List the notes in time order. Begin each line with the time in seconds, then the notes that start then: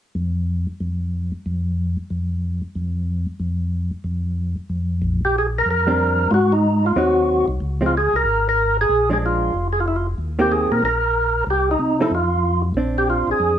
0.15 F2
0.80 F2
1.46 F2
2.10 F2
2.75 F2
3.40 F2
4.04 F2
4.70 F2
5.02 A#1
5.25 G4
5.38 G#4
5.58 A#4
5.66 F2
5.71 A#4
5.87 G3 C4 D4
6.30 G#2 F4 F#4
6.52 D#4
6.86 F4
6.95 D#2 F#3 C4 D#4 F#4
7.48 C2
7.60 C#2
7.81 F3 G#3 C4
7.86 F4
7.97 G#4
8.14 C2 A#4
8.24 G#1
8.49 A#4
8.81 G#4
8.89 A#1
9.10 F3 G#3 D4 G#4
9.26 F4
9.54 F1
9.73 G#4
9.80 F4
9.88 E4
9.96 F4
10.18 D#2
10.39 D#3 A#3 C4 G4
10.52 G#4
10.71 A#2 A#4
10.83 A#1 A#4
11.47 C2 G4
11.71 D#4
11.79 C3
12.01 F3 C4 D#4 E4 A4
12.11 F2 F4
12.74 A#1 C4 D4
12.98 G4
13.10 F4
13.27 A#1 G#4
13.40 F2